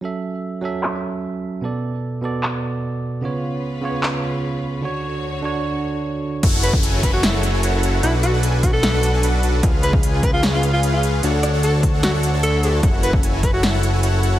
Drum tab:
CC |----------------|----------------|----------------|----------------|
HH |----------------|----------------|----------------|----------------|
CP |--------x-------|--------x-------|--------x-------|----------------|
SD |----------------|----------------|----------------|----------------|
BD |----------------|----------------|----------------|----------------|

CC |x---------------|----------------|----------------|----------------|
HH |x-x-x-x-x-x-x-x-|x-x-x-x-x-x-x-x-|x-x-x-x-x-x-x-x-|x-x-x-x-x-x-x-x-|
CP |----------------|----------------|----------------|----------------|
SD |--------o-------|--------o-------|--------o-------|--r-----o-------|
BD |o--o--o---------|------o---------|o--o--o---------|------o---------|

CC |----------------|
HH |x-x-x-x-x-x-x-x-|
CP |----------------|
SD |--------o-------|
BD |o--o--o---------|